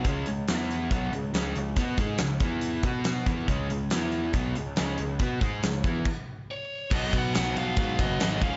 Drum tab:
CC |--------|--------|--------|----x---|
RD |--------|--------|--------|--------|
HH |xxxxxxxx|xxxxxxxx|xxxxxxxx|xxxx----|
SD |--o---o-|--o---o-|--o---o-|--o-----|
BD |o---o---|oo-o-o-o|o---o---|oo-oo---|

CC |x-------|
RD |-xxxxxxx|
HH |--------|
SD |--o---o-|
BD |oo--oo-o|